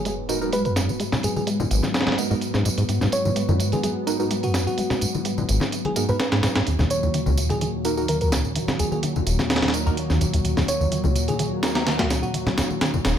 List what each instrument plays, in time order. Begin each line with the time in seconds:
Already playing: analog synth pad G#2 F#3 B3, sub drop
0.05 acid bass G#3, fm electric piano G#4, closed hi-hat, tambourine
0.29 synth stab G#2 B3 D#4 F#4 A#4, closed hi-hat, tambourine
0.41 synth stab G#2 B3 D#4 F#4 A#4, tambourine
0.52 acid bass G#3, fm electric piano B4, closed hi-hat, tambourine
0.65 acid bass F#2, fm electric piano B4, closed hi-hat, tambourine
0.76 snare, closed hi-hat, tambourine
0.89 acid bass B3, tambourine
1.00 acid bass G#3, closed hi-hat, tambourine
1.12 snare, tambourine, low conga
1.23 acid bass G#2, fm electric piano G#4, closed hi-hat, tambourine
1.36 fm electric piano G#4, tambourine, high conga
1.47 acid bass G#3, closed hi-hat, tambourine
1.60 acid bass F#2, tambourine, high conga
1.71 acid bass G#1, closed hi-hat, tambourine
1.83 snare, tambourine, high conga
1.94 snare, closed hi-hat, tambourine
2.01 snare, closed hi-hat
2.07 snare, closed hi-hat, high conga
2.12 snare, closed hi-hat
2.18 synth stab G#2 B3 D#4 F#4 A#4, closed hi-hat, tambourine
2.30 synth stab G#2 B3 D#4 F#4 A#4, acid bass G#2, tambourine
2.41 closed hi-hat, tambourine
2.54 acid bass G#2, snare, tambourine
2.65 acid bass G#2, closed hi-hat, tambourine
2.78 acid bass G#2, closed hi-hat, tambourine
2.89 acid bass G#2, closed hi-hat, tambourine
3.01 acid bass G#2, snare, tambourine, low conga
3.12 fm electric piano C#5, closed hi-hat, tambourine
3.25 acid bass G#2, tambourine, high conga
3.36 acid bass G#3, closed hi-hat, tambourine
3.49 acid bass F#2, tambourine, high conga
3.60 acid bass G#2, closed hi-hat, tambourine
3.72 acid bass F#3, fm electric piano G#4, closed hi-hat, tambourine, high conga
3.83 acid bass G#3, fm electric piano G#4, closed hi-hat, tambourine
4.07 synth stab G#2 B3 D#4 F#4 A#4, closed hi-hat, tambourine
4.19 synth stab G#2 B3 D#4 F#4 A#4, tambourine
4.31 acid bass G#3, closed hi-hat, tambourine
4.43 acid bass F#2, fm electric piano F#4, closed hi-hat, tambourine
4.54 snare, closed hi-hat, tambourine
4.67 acid bass B3, fm electric piano F#4, tambourine
4.78 acid bass G#3, closed hi-hat, tambourine
4.90 snare, tambourine, low conga
5.01 acid bass G#2, closed hi-hat, tambourine
5.14 tambourine, high conga
5.25 acid bass G#3, closed hi-hat, tambourine
5.38 acid bass F#2, tambourine, high conga
5.49 acid bass G#1, closed hi-hat, tambourine
5.60 snare, tambourine, high conga
5.72 closed hi-hat, tambourine
5.85 fm electric piano G#4, closed hi-hat, high conga
5.96 synth stab G#2 B3 D#4 F#4 A#4, fm electric piano G#4, closed hi-hat, tambourine
6.09 synth stab G#2 B3 D#4 F#4 A#4, acid bass G#2, fm electric piano B4, tambourine
6.20 fm electric piano B4, snare, closed hi-hat, tambourine
6.32 acid bass G#2, snare, closed hi-hat, tambourine
6.43 acid bass G#2, snare, closed hi-hat, tambourine
6.55 acid bass G#2, snare, closed hi-hat, tambourine
6.67 acid bass D#2, analog synth pad D#2 A#2 F#3, closed hi-hat, tambourine
6.79 acid bass D#2, snare, tambourine, low conga
6.90 fm electric piano C#5, closed hi-hat, tambourine
7.03 acid bass D#2, tambourine, high conga
7.14 acid bass D#3, closed hi-hat, tambourine
7.26 acid bass C#2, tambourine, high conga
7.37 acid bass D#2, closed hi-hat, tambourine
7.49 acid bass C#3, fm electric piano G#4, closed hi-hat, tambourine, high conga
7.61 acid bass D#3, fm electric piano G#4, closed hi-hat, tambourine
7.85 synth stab A#3 D#4 F#4 A#4, closed hi-hat, tambourine
7.97 synth stab A#3 D#4 F#4 A#4, tambourine
8.08 acid bass D#3, fm electric piano A#4, closed hi-hat, tambourine
8.21 acid bass C#2, fm electric piano A#4, closed hi-hat, tambourine
8.32 snare, closed hi-hat, tambourine
8.45 acid bass F#3, tambourine
8.55 acid bass D#3, closed hi-hat, tambourine
8.68 snare, tambourine, low conga
8.79 acid bass D#2, fm electric piano G#4, closed hi-hat, tambourine
8.91 fm electric piano G#4, tambourine, high conga
9.03 acid bass D#3, closed hi-hat, tambourine
9.15 acid bass C#2, tambourine, high conga
9.27 acid bass D#1, closed hi-hat, tambourine
9.39 snare, tambourine, high conga
9.50 snare, closed hi-hat, tambourine
9.56 snare, closed hi-hat
9.62 snare, closed hi-hat, high conga
9.68 snare, closed hi-hat
9.74 synth stab A#3 D#4 F#4 A#4, closed hi-hat, tambourine
9.86 acid bass D#2, synth stab A#3 D#4 F#4 A#4, tambourine
9.97 closed hi-hat, tambourine
10.10 acid bass D#2, snare, tambourine
10.21 acid bass D#2, closed hi-hat, tambourine
10.33 acid bass D#2, closed hi-hat, tambourine
10.45 acid bass D#2, closed hi-hat, tambourine
10.57 acid bass D#2, snare, tambourine, low conga
10.68 fm electric piano C#5, closed hi-hat, tambourine
10.81 acid bass D#2, tambourine, high conga
10.92 acid bass D#3, closed hi-hat, tambourine
11.04 acid bass C#2, tambourine, high conga
11.16 acid bass D#2, closed hi-hat, tambourine
11.28 acid bass C#3, fm electric piano G#4, closed hi-hat, tambourine, high conga
11.39 acid bass D#3, fm electric piano G#4, closed hi-hat, tambourine
11.63 synth stab A#3 D#4 F#4 A#4, snare, closed hi-hat, tambourine
11.75 synth stab A#3 D#4 F#4 A#4, snare, closed hi-hat, tambourine
11.87 acid bass D#3, snare, closed hi-hat, tambourine
11.99 acid bass C#2, fm electric piano F#4, snare, closed hi-hat, tambourine
12.10 snare, closed hi-hat, tambourine
12.22 acid bass F#3, fm electric piano F#4, tambourine
12.34 acid bass D#3, closed hi-hat, tambourine
12.46 snare, tambourine, low conga
12.58 acid bass D#2, snare, closed hi-hat, tambourine
12.70 tambourine, high conga
12.81 acid bass D#3, snare, closed hi-hat, tambourine
12.94 acid bass C#2, tambourine, high conga
13.05 acid bass D#1, snare, closed hi-hat, tambourine